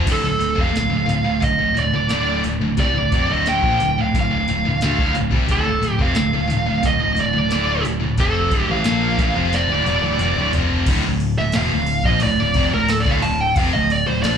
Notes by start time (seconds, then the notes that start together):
0.05 D1 D2 A2, kick, open hi-hat, crash
0.12 A4
0.22 D1 D2 A2
0.39 D1 D2 A2, open hi-hat
0.55 F1 F2 C3, kick
0.61 F5
0.72 D1 D2 A2, open hi-hat
0.77 snare
0.90 D1 D2 A2
1.06 D1 D2 A2, open hi-hat
1.24 D1 D2 A2
1.40 D1 D2 A2 D#5, kick, open hi-hat
1.58 D1 D2 A2
1.74 D1 D2 A2 D5, open hi-hat
1.93 D1 D2 A2
2.09 D1 D2 A2 D3, snare, open hi-hat
2.43 D1 D2 A2, open hi-hat
2.61 D1 D2 A2
2.77 C2 C3 G3 D5, kick, open hi-hat
2.94 D1 D2 A2
3.12 F1 F2 C3, kick, open hi-hat
3.29 D1 D2 A2 D3 D#5
3.46 G5, snare, open hi-hat
3.62 A#1 A#2 F3, kick
3.80 D1 D2 A2, open hi-hat
3.98 D1 D2 A2 F5
4.13 D1 D2 A2, kick, open hi-hat
4.21 F5
4.31 D1 D2 A2
4.48 D1 D2 A2, open hi-hat
4.65 D1 D2 A2
4.81 D2 D3 A3, snare, open hi-hat
4.98 D1 D2 A2, kick
5.15 D2 A2, open hi-hat
5.20 D1
5.31 C2 C3 G3, kick
5.48 D1 D2 A2 A4, kick, open hi-hat
5.65 D2 A2
5.70 D1
5.82 D1 D2 A2, open hi-hat
5.99 F1 F2 C3 F5, kick
6.15 D2 A2, snare, open hi-hat
6.21 D1
6.33 D2 A2
6.39 D1
6.47 D2 A2, open hi-hat
6.52 D1 A2
6.66 D2 A2
6.72 D1
6.83 D1 D2 A2 D#5, kick, open hi-hat
6.99 D2 A2
7.06 D1
7.15 D2 A2, open hi-hat
7.19 D1 D2 D5
7.33 D2 A2
7.37 D1
7.49 D2 A2 D3, snare, open hi-hat
7.54 D1
7.82 D1 D2 A2, open hi-hat
8.00 D1 D2 A2
8.17 F1 F2 C3 F3 A4, kick, open hi-hat
8.50 D1 D2 A2, kick, open hi-hat
8.68 A1 A2 E3 F5
8.84 A#1 A#2 F3 A#3, snare, open hi-hat
9.18 A1 A2 E3, kick, open hi-hat
9.35 F1 F2 C3 F3
9.53 D5, snare, open hi-hat
9.68 D1 D2 A2
9.84 E1 E2 B2, open hi-hat, high tom
10.01 D1 D2 A2, high tom
10.19 F1 F2 C3, open hi-hat, mid tom
10.36 D1 D2 A2
10.53 F1 F2 C3 F3, floor tom, open hi-hat
10.69 floor tom
10.86 D1 D2 A2, kick, crash
11.04 D1 D2 A2
11.20 crash
11.38 D1 D2 A2 E5
11.52 E1 E2 F5, snare, crash
11.57 B2
11.73 D1 D2 A2
11.87 crash
12.04 A#1 A#2 F3 D#5, kick
12.20 D2 A2 D5, crash
12.24 D1
12.40 D1 D2 A2
12.54 F1 F2 C3, kick, crash
12.73 D1 D2 A2 A#4
12.88 A4, snare, crash
13.00 D5
13.05 D1 D2 A2, kick
13.11 F5
13.22 D1 D2 A2 A5, crash
13.41 G5
13.56 F1 F2 C3 F5, kick, crash
13.73 D1 D2 A2 D#5
13.90 D5, crash
14.07 D1 D2 A2 C5
14.23 A#1 A#2 F3 D5, snare, crash